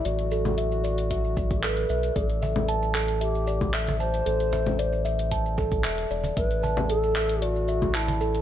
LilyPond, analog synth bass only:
\new Staff \with { instrumentName = "Analog synth bass" } { \clef bass \time 4/4 \key b \phrygian \tempo 4 = 114 a,,2~ a,,8 a,,4 b,,8 | a,,1 | a,,2. e,,8 e,,8 | a,,1 | }